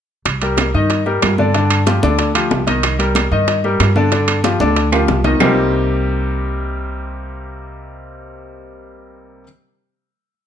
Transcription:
0.26 upright bass C2, high bongo, high conga, high timbale, claves
0.42 grand piano G3 G4 A#4, high bongo, high conga, high timbale
0.57 high bongo, high conga, high timbale, low timbale, claves
0.74 upright bass G2, grand piano D#3 D#4 D#5, high conga
0.90 high bongo, high conga, high timbale
1.06 grand piano G3 G4 A#4, high bongo, high conga
1.22 upright bass G2, high bongo, low bongo, high conga, high timbale, low timbale, claves
1.38 grand piano D3 D4 D5, high bongo, high conga
1.54 grand piano D3 D4 D5, high bongo, high conga, high timbale
1.70 high bongo, high conga, high timbale, claves
1.87 grand piano F3 F4 G4, high bongo, high conga, high timbale, low timbale
2.03 upright bass D2, grand piano D3 D4 D5, high bongo, high conga
2.19 high bongo, high conga, high timbale
2.35 grand piano F3 F4 G4, high conga, high timbale, claves
2.51 upright bass C2, high bongo, low bongo, high conga, low timbale
2.67 grand piano D#3 D#4 D#5, high bongo, high conga, high timbale
2.83 high bongo, high conga, high timbale, claves
2.99 grand piano G3 G4 A#4, high bongo, high conga, high timbale
3.15 high bongo, high conga, high timbale, low timbale, claves
3.31 upright bass G2, grand piano D#3 D#4 D#5, high conga
3.47 high bongo, high conga, high timbale
3.64 grand piano G3 G4 A#4, high bongo, high conga
3.80 upright bass G2, high bongo, low bongo, high conga, high timbale, low timbale, claves
3.96 grand piano D3 D4 D5, high bongo, high conga
4.12 grand piano D3 D4 D5, high bongo, high conga, high timbale
4.28 high bongo, high conga, high timbale, claves
4.44 grand piano F3 F4 G4, high bongo, high conga, high timbale, low timbale
4.60 upright bass D2, grand piano D3 D4 D5, high bongo, high conga
4.76 high bongo, high conga, high timbale
4.92 grand piano F3 F4 G4, high conga, high timbale, claves
5.08 upright bass C2, high bongo, low bongo, high conga, low timbale
5.24 grand piano D#3 D#4 D#5, high bongo, high conga, low timbale
5.40 upright bass C2, grand piano C3 G3 A#3 C4 D#4 G4, low bongo, low conga, low timbale, claves

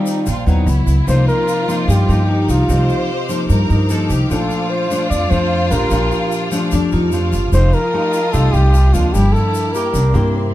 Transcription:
Already playing: nylon-string guitar D#3 G3 C4 F4, violin section D#4, string section C5 F5 G5, vibraphone D5 G5 A5
0.06 shaker
0.26 upright bass A#1, nylon-string guitar A#2, violin section F4, shaker
0.46 upright bass D#2, nylon-string guitar F#3 B3 E4, violin section D#4, shaker
0.66 upright bass C#2, violin section E4, string section B4 E5 F#5, shaker
0.86 upright bass C#2, shaker
1.07 upright bass C2, nylon-string guitar C3 F3 A#3 D#4, violin section F4, flugelhorn C5, string section C5 D#5 D6 F6, shaker
1.28 flugelhorn A#4, shaker
1.48 shaker
1.68 nylon-string guitar F3 A#3 D#4, shaker
1.88 upright bass G2, nylon-string guitar G2, vibraphone G4, flugelhorn G4, shaker
2.08 upright bass G2, nylon-string guitar F3 A#3 D#4, shaker
2.29 violin section D#4
2.48 upright bass C2, flugelhorn F4, shaker
2.68 upright bass C2, nylon-string guitar C3 F3 A#3 D#4, violin section C5, shaker
2.89 shaker
3.29 nylon-string guitar F3 A#3 D#4, shaker
3.49 nylon-string guitar G2, upright bass G2, violin section A#4, shaker
3.70 upright bass G2, vibraphone D#4, shaker
3.90 nylon-string guitar F3 A#3 D#4, violin section A4, shaker
4.10 upright bass C2, violin section G4, shaker
4.30 upright bass A#1, nylon-string guitar A#2 F3 A3 D4, violin section F4, flugelhorn A4, string section A5, shaker
4.50 shaker
4.70 flugelhorn C5
4.90 nylon-string guitar F3 A3 D4, shaker
5.10 nylon-string guitar F2, upright bass F2, flugelhorn D5, shaker
5.30 upright bass F2, nylon-string guitar F3 A3 D4, flugelhorn C5, shaker
5.70 upright bass A#1, nylon-string guitar F3 A3 D4, vibraphone G4, flugelhorn A#4, shaker
5.91 upright bass A#1, nylon-string guitar A#2 F3 D4, shaker
6.11 shaker
6.32 shaker
6.51 nylon-string guitar F3 A3 D4, shaker
6.71 nylon-string guitar F2, upright bass F2, violin section D4, shaker
6.92 upright bass F2, violin section D#4, vibraphone F4, shaker
7.12 nylon-string guitar F3 A3 D4, violin section F4, shaker
7.32 upright bass G1, shaker
7.52 upright bass F1, nylon-string guitar F3 A3 D#4 G4, violin section F4, flugelhorn C5, string section G5 A5 D#6, shaker
7.73 flugelhorn A#4, shaker
7.93 nylon-string guitar A3 D#4 G4, vibraphone D#5
8.13 shaker
8.33 upright bass C2, nylon-string guitar C3 A3 D#4 G4, flugelhorn A4, shaker
8.53 upright bass C2, flugelhorn G4, shaker
8.74 shaker
8.93 upright bass D2, nylon-string guitar F3 A#3 D4, flugelhorn F4, vibraphone A5, shaker
9.13 upright bass G1, nylon-string guitar G2, string section A#3 G5 D6, violin section E4, flugelhorn G4, shaker
9.33 flugelhorn A4, shaker
9.54 shaker
9.73 nylon-string guitar A#3 E4 G4, flugelhorn A#4, vibraphone D6, shaker
9.94 upright bass C2, nylon-string guitar C3, violin section D4, string section E5 C6, shaker
10.14 upright bass G2, nylon-string guitar A#3 E4 G4, shaker
10.36 violin section C4

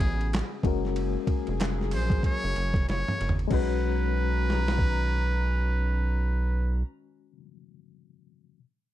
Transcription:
Already playing: string section C#3 B3 G#4, reed electric piano G#3 C#4 F#4 B4, muted trumpet G#4
0.00 analog synth bass A1, kick, ride
0.21 ride
0.33 snare, clap, ride
0.63 analog synth bass F#1, string section F#3 A#3 G#4, reed electric piano G#3 C#4 F#4, kick, ride
0.67 reed electric piano A#4
0.85 snare
0.96 ride
1.27 kick, ride
1.47 analog synth bass F1, ride
1.60 snare, clap, ride
1.81 snare
1.91 analog synth bass A#1, muted trumpet C5, open hi-hat, ride
2.10 kick, ride
2.23 muted trumpet C#5, kick, ride
2.44 analog synth bass F#1
2.56 analog synth bass F#1, ride
2.74 analog synth bass F1, kick, ride
2.89 analog synth bass F#1, muted trumpet C#5, snare, ride
3.08 mid tom
3.21 analog synth bass F#1, ride
3.29 floor tom
3.39 ride
3.48 string section D#3 C#4 A#5, reed electric piano G#3 C#4, kick, crash
3.52 analog synth bass B1, reed electric piano F#4 B4, muted trumpet B4
4.50 snare
4.68 snare
4.79 kick

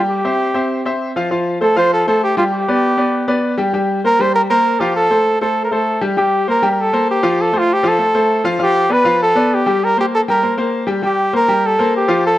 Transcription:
Already playing: grand piano G3 G4 G5
0.10 flugelhorn G4
0.24 grand piano C4 C5 E5
0.54 grand piano C4 C5 E5
0.85 grand piano C4 C5 E5
1.16 grand piano F3 F4 F5
1.31 grand piano F3 F4 F5
1.61 grand piano A3 A4 C5, flugelhorn A4
1.76 grand piano F3 F4 F5, flugelhorn C5
1.93 flugelhorn A4
2.07 grand piano A3 A4 C5, flugelhorn A4
2.24 flugelhorn G4
2.37 grand piano G3 G4 G5, flugelhorn F4
2.53 flugelhorn G4
2.68 grand piano B3 B4 D5
2.97 grand piano B3 B4 D5
3.28 grand piano B3 B4 D5
3.58 grand piano G3 G4 G5
3.73 grand piano G3 G4 G5
4.04 grand piano A#3 A#4 C5, flugelhorn A#4
4.19 grand piano G3 G4 G5, flugelhorn C5
4.35 flugelhorn A#4
4.50 grand piano A#3 A#4 C5, flugelhorn A#4
4.80 grand piano F3 F4 F5, flugelhorn G4
4.96 flugelhorn A4
5.10 grand piano A3 A4 C5
5.41 grand piano A3 A4 C5, flugelhorn A4
5.65 flugelhorn A#4
5.71 grand piano A3 A4 C5, flugelhorn A4
6.01 grand piano G3 G4 G5
6.17 grand piano G3 G4 G5, flugelhorn G4
6.48 grand piano A#3 A#4 C5, flugelhorn A#4
6.62 grand piano G3 G4 G5
6.71 flugelhorn A#4
6.81 flugelhorn A4
6.93 grand piano A#3 A#4 C5
7.11 flugelhorn G4
7.23 grand piano F3 F4 F5
7.41 flugelhorn A4
7.52 grand piano A3 A4 C5
7.58 flugelhorn F4
7.73 flugelhorn G4
7.83 grand piano F3 F4 F5
7.88 flugelhorn A4
7.98 grand piano A3 A4 C5
8.15 grand piano A3 A4 C5
8.44 grand piano F3 F4 F5
8.59 grand piano F3 F4 F5
8.63 flugelhorn G4
8.89 grand piano B3 B4 D5, flugelhorn B4
9.04 grand piano F3 F4 F5
9.23 flugelhorn A4
9.35 grand piano B3 B4 D5
9.54 flugelhorn G4
9.66 grand piano G3 G4 G5
9.84 flugelhorn A#4
9.97 grand piano A#3 A#4 C5, flugelhorn G4
10.15 flugelhorn A4
10.28 grand piano G3 G4 G5, flugelhorn A#4
10.42 grand piano A#3 A#4 C5
10.58 grand piano A#3 A#4 C5
10.87 grand piano G3 G4 G5
11.02 grand piano G3 G4 G5, flugelhorn G4
11.33 grand piano A#3 A#4 C5, flugelhorn A#4
11.48 grand piano G3 G4 G5
11.66 flugelhorn A4
11.79 grand piano A#3 A#4 C5
11.96 flugelhorn G4
12.08 grand piano F3 F4 F5
12.27 flugelhorn A4

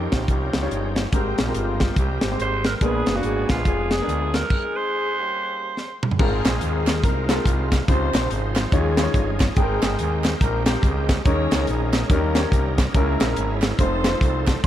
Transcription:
Already playing: tonewheel organ F3 C#4 D#4 G5, horn section G3 A#3 C#4 G4, upright piano G3 D#4 F4 A#4
0.12 fm bass A#1, kick, snare, closed hi-hat
0.28 fm bass C2, horn section G3 A#3 C#4 G4, kick, closed hi-hat
0.53 fm bass C#2, snare, closed hi-hat
0.62 upright piano G3 D#4 F4 C#5
0.71 fm bass G1, horn section G#3 C#4 F4 G#4, closed hi-hat
0.96 snare, closed hi-hat
1.12 fm bass G#1, upright piano G#2 G#3 C4 G4 A#4, horn section G3 A#3 C4 G4, tonewheel organ G#3 C4 G4 A#4, kick, closed hi-hat
1.38 fm bass A#1, horn section F3 F4, snare, closed hi-hat
1.48 upright piano G#3 C4 G4 A#4
1.54 fm bass G1, horn section F3 A#3 C4 F4, closed hi-hat
1.80 kick, snare, closed hi-hat
1.96 fm bass C2, horn section G3 A#3 C4 G4, kick, closed hi-hat
2.21 fm bass G#1, snare, closed hi-hat
2.31 upright piano G#3 C4 G4 C5
2.39 fm bass G#1, alto saxophone C5, closed hi-hat
2.64 alto saxophone A#4, snare, closed hi-hat
2.77 tonewheel organ G#4, alto saxophone A#4, closed hi-hat
2.81 fm bass A#1, upright piano A#2 G#3 B3 D4 A#4, tonewheel organ G#3 B3 D4, horn section B3 D4 G#4 B4, alto saxophone G#4, kick
3.06 fm bass F#1, snare, closed hi-hat
3.16 upright piano G#3 B3 D4 F5, alto saxophone F#4
3.23 fm bass G#1, horn section G#3 B3 D4 G#4, closed hi-hat
3.49 fm bass A#1, alto saxophone F4, kick, snare, closed hi-hat
3.65 fm bass F1, horn section G#3 B3 D4 G#4, kick, closed hi-hat
3.91 alto saxophone G#4, snare, closed hi-hat
4.01 upright piano G#3 B3 D4 A#4
4.07 fm bass D2, horn section F3 G#3 D4 F4, closed hi-hat
4.34 alto saxophone A#4, snare, closed hi-hat
4.50 horn section G#3 C4 D#4 G#4, kick, crash
4.77 alto saxophone C5
5.19 horn section G3 A#3 C#4 G4
5.77 snare
6.03 mid tom
6.11 floor tom
6.19 fm bass G#1, upright piano G#2 G#3 C4 F4 A#4, horn section G#3 C4 F4 G#4, tonewheel organ G#3 C4 F4 A#4, kick, crash
6.45 fm bass A#1, snare, clap, closed hi-hat
6.61 fm bass D#2, closed hi-hat
6.87 snare, clap, closed hi-hat
7.04 fm bass C2, horn section A#3 D#4 F4 A#4, kick, closed hi-hat
7.29 upright piano G#3 C4 F4 A4, horn section A#3 A#4, snare, clap, closed hi-hat
7.35 upright piano A#4
7.46 fm bass C2, horn section G#3 C4 F4 G#4, kick, closed hi-hat
7.72 kick, snare, clap, closed hi-hat
7.88 fm bass C#2, upright piano C3 C#3 D#4 F4 C5, tonewheel organ F3 C4 D#4 B4, horn section C4 D#4 F4 C5, kick, closed hi-hat
7.94 tonewheel organ C5
8.13 fm bass A#1, snare, clap, closed hi-hat
8.30 fm bass G#1, horn section G#3 C4 F4 G#4, closed hi-hat
8.56 snare, clap, closed hi-hat
8.71 fm bass D#2, upright piano D#3 G#3 D#4 F4 C#5, tonewheel organ F3 C#4 D#4 G#4, horn section G#3 C#4 F4 G#4, kick, closed hi-hat
8.97 upright piano G#3 D#4 F4 C5, snare, clap, closed hi-hat
9.03 upright piano C#5
9.14 fm bass G1, kick, closed hi-hat
9.40 kick, snare, clap, closed hi-hat
9.55 fm bass G#1, upright piano G#2 G#3 C4 A4 G5, horn section G#3 C4 D#4 G#4, tonewheel organ G#3 C4 A#4 G5, kick, closed hi-hat
9.62 upright piano A#4
9.82 fm bass G1, snare, clap, closed hi-hat
9.99 fm bass D#2, closed hi-hat
10.24 snare, clap, closed hi-hat
10.41 fm bass A#1, horn section A#3 D#4 G4 A#4, kick, closed hi-hat
10.66 upright piano G#3 C4 G4 C5, horn section A#3 A#4, snare, clap, closed hi-hat
10.83 fm bass C#2, horn section G#3 C4 D#4 G#4, kick, closed hi-hat
11.09 kick, snare, clap, closed hi-hat
11.25 fm bass D#2, upright piano D#3 G#3 C#4 D#4 A#4, tonewheel organ G#3 C#4 D#4 A#4, horn section C#4 G#4 A#4 C#5, kick, closed hi-hat
11.51 fm bass C#2, snare, clap, closed hi-hat
11.67 fm bass A#1, horn section A#3 C#4 A#4, closed hi-hat
11.93 snare, clap, closed hi-hat
12.10 fm bass D#2, upright piano D#3 G3 C#4 D#4 A#4, tonewheel organ G3 C#4 D#4 A#4, horn section A#3 C#4 G4 A#4, kick, closed hi-hat
12.35 upright piano G3 C#4 D#4 C#5, snare, clap, closed hi-hat
12.52 fm bass C2, kick, closed hi-hat
12.78 kick, snare, clap, closed hi-hat
12.94 fm bass C#2, upright piano C#3 G#3 C#4 E4 A#4, tonewheel organ G#3 C#4 E4 A#4, horn section A#3 E4 A#4, kick, closed hi-hat
13.20 fm bass A#1, snare, clap, closed hi-hat
13.36 fm bass G#1, closed hi-hat
13.62 snare, clap, closed hi-hat
13.79 fm bass F1, tonewheel organ F3 C4 D#4 A4, upright piano A3 D#4 F4 C5, horn section C4 D#4 A4 C5, kick, closed hi-hat
14.04 upright piano A3 D#4 F4 B4, snare, clap, closed hi-hat
14.11 upright piano C5
14.21 fm bass C2, kick, closed hi-hat
14.46 horn section A3 A4, kick, snare, clap, closed hi-hat
14.64 horn section A#3 A#4, tonewheel organ A#3 C#4, kick, closed hi-hat

